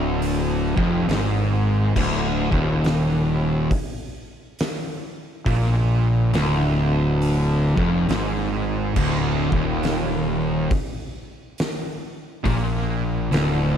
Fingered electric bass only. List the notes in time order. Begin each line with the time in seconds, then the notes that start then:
Already playing: D1
0.78 F1
1.08 G#1
1.96 D1
2.52 D#1
5.46 A#1
6.33 D1
7.78 F1
8.09 G#1
8.96 D1
9.52 D#1
12.46 A#1
13.32 D1